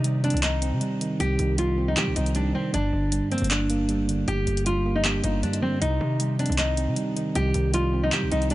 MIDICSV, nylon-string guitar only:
0, 0, Header, 1, 2, 480
1, 0, Start_track
1, 0, Tempo, 384615
1, 1498, Time_signature, 4, 2, 24, 8
1, 10662, End_track
2, 0, Start_track
2, 0, Title_t, "Nylon-string guitar"
2, 0, Program_c, 0, 24
2, 0, Note_on_c, 0, 63, 95
2, 255, Note_off_c, 0, 63, 0
2, 298, Note_on_c, 0, 62, 90
2, 497, Note_off_c, 0, 62, 0
2, 537, Note_on_c, 0, 63, 79
2, 1448, Note_off_c, 0, 63, 0
2, 1497, Note_on_c, 0, 67, 110
2, 1949, Note_off_c, 0, 67, 0
2, 1979, Note_on_c, 0, 65, 87
2, 2324, Note_off_c, 0, 65, 0
2, 2349, Note_on_c, 0, 63, 80
2, 2441, Note_off_c, 0, 63, 0
2, 2461, Note_on_c, 0, 67, 88
2, 2658, Note_off_c, 0, 67, 0
2, 2699, Note_on_c, 0, 63, 74
2, 2897, Note_off_c, 0, 63, 0
2, 2941, Note_on_c, 0, 62, 86
2, 3138, Note_off_c, 0, 62, 0
2, 3180, Note_on_c, 0, 60, 82
2, 3378, Note_off_c, 0, 60, 0
2, 3418, Note_on_c, 0, 62, 92
2, 4095, Note_off_c, 0, 62, 0
2, 4138, Note_on_c, 0, 60, 81
2, 4337, Note_off_c, 0, 60, 0
2, 4380, Note_on_c, 0, 62, 77
2, 5289, Note_off_c, 0, 62, 0
2, 5340, Note_on_c, 0, 67, 112
2, 5790, Note_off_c, 0, 67, 0
2, 5819, Note_on_c, 0, 65, 79
2, 6164, Note_off_c, 0, 65, 0
2, 6184, Note_on_c, 0, 63, 78
2, 6278, Note_off_c, 0, 63, 0
2, 6299, Note_on_c, 0, 67, 91
2, 6497, Note_off_c, 0, 67, 0
2, 6540, Note_on_c, 0, 63, 77
2, 6737, Note_off_c, 0, 63, 0
2, 6777, Note_on_c, 0, 62, 84
2, 6976, Note_off_c, 0, 62, 0
2, 7019, Note_on_c, 0, 60, 88
2, 7217, Note_off_c, 0, 60, 0
2, 7258, Note_on_c, 0, 63, 95
2, 7935, Note_off_c, 0, 63, 0
2, 7978, Note_on_c, 0, 62, 87
2, 8177, Note_off_c, 0, 62, 0
2, 8217, Note_on_c, 0, 63, 79
2, 9128, Note_off_c, 0, 63, 0
2, 9179, Note_on_c, 0, 67, 113
2, 9630, Note_off_c, 0, 67, 0
2, 9659, Note_on_c, 0, 65, 88
2, 10004, Note_off_c, 0, 65, 0
2, 10026, Note_on_c, 0, 63, 85
2, 10119, Note_off_c, 0, 63, 0
2, 10140, Note_on_c, 0, 67, 86
2, 10338, Note_off_c, 0, 67, 0
2, 10378, Note_on_c, 0, 63, 77
2, 10576, Note_off_c, 0, 63, 0
2, 10619, Note_on_c, 0, 62, 88
2, 10662, Note_off_c, 0, 62, 0
2, 10662, End_track
0, 0, End_of_file